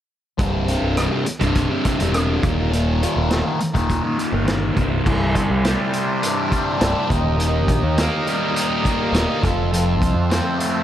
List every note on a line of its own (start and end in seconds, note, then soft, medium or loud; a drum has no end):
0.38 0.76 C1 medium
0.38 0.65 C2 medium
0.38 0.67 G2 medium
0.38 0.68 C3 medium
0.38 kick loud
0.38 closed hi-hat medium
0.66 0.96 C2 medium
0.66 0.97 G2 medium
0.66 0.98 C3 medium
0.66 closed hi-hat medium
0.82 1.07 C1 medium
0.97 1.25 C2 medium
0.97 1.13 G2 medium
0.97 1.10 C3 loud
0.97 cross-stick medium
0.97 closed hi-hat medium
1.11 1.26 G2 medium
1.11 1.26 C3 medium
1.26 muted distorted electric guitar stroke soft
1.26 closed hi-hat medium
1.40 1.66 C1 medium
1.40 1.72 G2 medium
1.40 1.69 C3 medium
1.40 kick medium
1.40 closed hi-hat medium
1.55 kick medium
1.55 closed hi-hat medium
1.70 1.85 G2 medium
1.70 1.86 C3 medium
1.85 2.12 C2 medium
1.85 2.01 G2 medium
1.85 1.98 C3 medium
1.85 kick medium
1.85 closed hi-hat medium
1.99 2.37 E1 medium
1.99 2.14 G2 soft
1.99 2.14 C3 medium
1.99 closed hi-hat medium
2.13 2.41 C2 medium
2.13 2.42 G2 medium
2.13 2.42 C3 medium
2.13 cross-stick loud
2.13 closed hi-hat medium
2.43 3.04 D#1 medium
2.43 2.70 D#2 medium
2.43 2.60 A#2 medium
2.43 2.56 D#3 loud
2.43 kick medium
2.43 closed hi-hat medium
2.57 2.72 A#2 soft
2.57 2.73 D#3 medium
2.71 3.00 D#2 medium
2.71 3.01 A#2 medium
2.71 3.02 D#3 medium
2.71 closed hi-hat medium
3.01 3.28 D#2 medium
3.01 3.30 A#2 medium
3.01 3.31 D#3 medium
3.01 closed hi-hat medium
3.16 3.41 D#1 medium
3.29 3.59 D#2 medium
3.29 3.45 A#2 medium
3.29 3.42 D#3 loud
3.29 snare medium
3.29 closed hi-hat medium
3.44 3.60 A#2 medium
3.44 3.60 D#3 medium
3.60 muted distorted electric guitar stroke soft
3.60 closed hi-hat medium
3.73 3.99 D#1 medium
3.73 4.04 A#2 medium
3.73 4.02 D#3 medium
3.73 kick medium
3.73 closed hi-hat medium
3.90 kick medium
3.90 closed hi-hat medium
4.03 4.17 A#2 medium
4.03 4.19 D#3 medium
4.17 4.44 D#2 medium
4.17 4.33 A#2 medium
4.17 4.31 D#3 medium
4.17 closed hi-hat soft
4.32 4.70 G1 medium
4.32 4.46 A#2 medium
4.32 4.47 D#3 medium
4.46 4.74 D#2 medium
4.46 4.75 A#2 medium
4.46 4.75 D#3 medium
4.46 snare loud
4.46 closed hi-hat medium
4.74 5.01 C1 medium
4.74 5.03 C2 loud
4.74 4.91 G2 medium
4.74 4.88 C3 loud
4.74 kick medium
4.74 closed hi-hat soft
4.89 5.05 G2 soft
4.89 5.03 C3 medium
5.04 5.34 C1 medium
5.04 6.51 C2 medium
5.04 7.08 E4 medium
5.04 9.39 G4 medium
5.04 7.08 C5 medium
5.04 7.08 D5 medium
5.04 kick loud
5.04 crash medium
5.34 5.47 G1 medium
5.34 kick medium
5.34 closed hi-hat medium
5.50 5.75 C2 medium
5.64 6.49 G3 medium
5.64 snare loud
5.64 closed hi-hat medium
5.93 7.10 C3 medium
5.93 closed hi-hat medium
6.22 6.78 D4 medium
6.22 closed hi-hat medium
6.50 7.09 G3 medium
6.50 kick medium
6.50 closed hi-hat medium
6.80 6.94 C1 medium
6.80 7.09 D4 medium
6.80 snare loud
6.80 closed hi-hat medium
7.08 7.68 D#1 medium
7.08 7.36 D#2 medium
7.08 9.40 D#4 medium
7.08 9.40 A#4 medium
7.08 9.40 D#5 medium
7.08 kick medium
7.08 closed hi-hat medium
7.38 8.84 D#2 medium
7.38 closed hi-hat medium
7.68 7.80 A#1 medium
7.68 kick medium
7.68 closed hi-hat medium
7.83 8.08 D#2 medium
7.97 8.82 A#3 medium
7.97 snare loud
7.97 closed hi-hat medium
8.26 9.43 G3 medium
8.26 closed hi-hat medium
8.55 9.12 D#4 medium
8.55 closed hi-hat medium
8.83 9.43 A#3 medium
8.83 kick medium
8.83 closed hi-hat medium
9.13 9.25 D#1 medium
9.13 9.43 D#4 medium
9.13 snare loud
9.13 closed hi-hat medium
9.42 10.01 F1 medium
9.42 9.71 F2 medium
9.42 10.83 F4 medium
9.42 10.83 A4 medium
9.42 10.83 C5 medium
9.42 10.83 E5 medium
9.42 kick loud
9.42 closed hi-hat medium
9.73 10.83 F2 medium
9.73 closed hi-hat medium
10.01 10.13 C2 medium
10.01 kick medium
10.01 closed hi-hat medium
10.14 10.39 F2 medium
10.30 10.83 C4 medium
10.30 snare medium
10.30 closed hi-hat medium
10.59 10.83 A3 medium
10.59 closed hi-hat medium